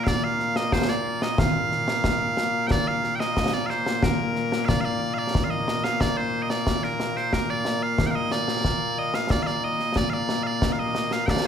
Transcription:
0.00 11.47 A#2 medium
0.00 11.47 A#3 medium
0.04 0.24 D5 medium
0.04 0.08 F5 medium
0.04 concert bass drum soft
0.04 snare medium
0.24 0.56 F5 medium
0.40 snare soft
0.56 0.73 D#5 loud
0.56 snare medium
0.72 0.90 C5 medium
0.72 concert bass drum medium
0.72 snare medium
0.90 1.22 D5 medium
1.22 1.39 D#5 medium
1.22 snare medium
1.38 2.67 F5 loud
1.38 concert bass drum medium
1.38 snare loud
1.72 snare soft
1.88 snare medium
2.04 concert bass drum medium
2.04 snare medium
2.37 snare medium
2.67 2.71 G5 loud
2.67 concert bass drum medium
2.67 snare medium
2.71 2.88 D5 loud
2.88 3.15 F5 medium
3.04 snare soft
3.15 3.20 G5 medium
3.20 3.53 D#5 medium
3.20 snare medium
3.37 concert bass drum soft
3.37 snare medium
3.53 3.66 D5 medium
3.66 3.70 F5 medium
3.66 snare soft
3.70 4.03 C5 medium
3.86 snare medium
4.03 4.65 A#4 medium
4.03 concert bass drum medium
4.03 snare medium
4.36 snare soft
4.52 snare medium
4.65 4.81 D5 medium
4.65 4.69 F5 medium
4.65 concert bass drum soft
4.65 snare medium
4.81 4.85 F5 medium
4.85 5.14 D5 medium
5.14 5.18 F5 medium
5.18 5.44 D5 medium
5.35 concert bass drum medium
5.35 snare medium
5.44 5.50 F5 medium
5.50 5.84 D#5 medium
5.68 snare medium
5.84 6.01 F5 loud
5.84 snare medium
6.01 6.17 D5 loud
6.01 concert bass drum medium
6.01 snare medium
6.17 6.42 C5 medium
6.42 6.50 D#5 medium
6.50 6.84 D5 medium
6.50 snare medium
6.67 concert bass drum medium
6.67 snare medium
6.83 7.17 A#4 medium
6.83 snare soft
7.00 snare medium
7.17 7.33 C5 loud
7.17 snare soft
7.33 7.50 A#4 medium
7.33 concert bass drum soft
7.33 snare medium
7.50 7.83 D5 medium
7.65 snare medium
7.83 8.07 F5 loud
7.98 concert bass drum medium
7.98 snare medium
8.07 8.11 G5 medium
8.11 8.15 F5 medium
8.15 8.32 D#5 loud
8.32 8.98 D5 loud
8.32 snare medium
8.48 snare medium
8.64 concert bass drum soft
8.64 snare medium
8.98 9.15 D#5 medium
9.14 9.31 F5 loud
9.14 snare medium
9.30 9.43 D5 loud
9.30 concert bass drum medium
9.30 snare medium
9.43 9.47 F5 medium
9.47 9.64 D5 medium
9.47 snare soft
9.64 9.97 D#5 medium
9.80 snare soft
9.96 10.10 D5 loud
9.96 concert bass drum soft
9.96 snare medium
10.10 10.43 D5 medium
10.10 10.13 F5 medium
10.29 snare medium
10.43 10.72 D5 medium
10.43 10.47 F5 medium
10.62 concert bass drum medium
10.62 snare medium
10.72 10.79 F5 medium
10.79 11.13 D#5 medium
10.95 snare medium
11.11 11.26 F5 loud
11.11 snare medium
11.26 11.46 D5 medium
11.26 11.30 G5 medium
11.26 concert bass drum soft
11.26 snare medium

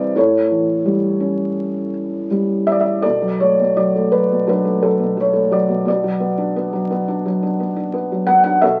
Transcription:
0.00 0.11 C2 medium
0.00 0.17 C3 medium
0.00 0.18 E3 medium
0.00 0.13 B4 medium
0.00 0.18 C5 medium
0.00 0.18 D5 medium
0.00 0.18 E5 medium
0.16 3.00 A2 medium
0.16 2.28 A4 medium
0.16 2.27 C#5 medium
0.51 1.90 E3 soft
0.85 2.27 G3 medium
1.20 2.64 C#4 medium
2.31 3.02 G3 soft
2.67 2.75 E5 medium
2.72 2.81 D5 medium
2.81 3.04 E5 medium
3.02 3.58 B2 medium
3.02 4.44 A4 medium
3.02 3.41 D5 medium
3.22 3.75 F#3 soft
3.40 3.94 A3 soft
3.40 3.78 C#5 medium
3.60 4.29 B2 soft
3.77 4.12 F#3 soft
3.77 4.14 D5 medium
3.96 4.63 A3 soft
4.12 4.46 F#3 soft
4.12 4.48 B4 medium
4.31 4.98 B2 soft
4.47 4.82 F#3 medium
4.47 5.84 D4 soft
4.47 4.85 B4 medium
4.65 5.32 A3 soft
4.83 5.15 F#3 soft
4.83 5.19 A4 medium
4.99 5.67 B2 soft
5.17 5.50 F#3 soft
5.17 5.55 C#5 medium
5.33 5.85 A3 soft
5.51 5.86 F#3 soft
5.51 5.87 D5 medium
5.69 5.84 B2 soft
5.85 8.57 B2 medium
5.85 7.22 F#4 medium
5.85 6.88 D5 medium
6.04 6.71 F#3 soft
6.20 6.55 B3 soft
6.38 7.07 D4 soft
6.56 6.89 B3 medium
6.73 7.24 F#3 medium
6.91 7.58 B3 medium
7.08 7.41 D4 medium
7.25 8.10 F#3 medium
7.42 7.75 D4 soft
7.60 7.92 B3 soft
7.76 8.44 D4 medium
7.93 8.27 B3 medium
8.12 8.62 F#3 soft
8.27 8.62 B3 soft
8.27 8.42 F#5 medium
8.44 8.62 D4 medium
8.44 8.62 F#5 loud
8.62 8.80 B2 medium
8.62 8.80 A4 medium
8.62 8.80 E5 medium

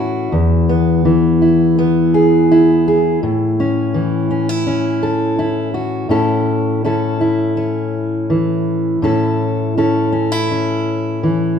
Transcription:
0.00 0.29 A2 medium
0.00 1.05 E3 medium
0.00 0.29 C#4 medium
0.00 1.41 E4 medium
0.00 0.32 F#4 medium
0.32 3.22 E2 medium
0.69 1.77 B3 medium
1.05 3.93 E3 medium
1.42 2.51 E4 medium
1.79 3.18 B3 medium
2.14 2.86 G#4 medium
2.51 4.30 E4 medium
2.88 3.19 G#4 medium
3.23 6.08 A2 medium
3.60 4.29 C#4 medium
3.94 8.29 E3 medium
4.31 4.49 C#4 medium
4.49 5.38 E4 medium
4.67 6.08 C#4 medium
5.03 5.74 A4 medium
5.39 6.07 E4 medium
5.74 6.11 F#4 medium
6.09 8.97 A2 medium
6.09 6.84 C#4 medium
6.09 6.85 E4 medium
6.09 6.86 A4 medium
6.84 7.57 C#4 medium
6.84 7.20 E4 medium
6.84 9.04 A4 medium
7.21 8.98 E4 medium
7.57 8.98 C#4 medium
8.30 11.21 E3 medium
9.02 11.59 A2 medium
9.02 9.76 C#4 medium
9.02 9.76 E4 medium
9.02 9.76 A4 medium
9.78 10.11 C#4 medium
9.78 10.12 E4 medium
9.78 11.59 A4 medium
10.12 10.32 C#4 soft
10.32 11.59 E4 soft
10.51 11.59 C#4 medium
11.23 11.59 E3 medium

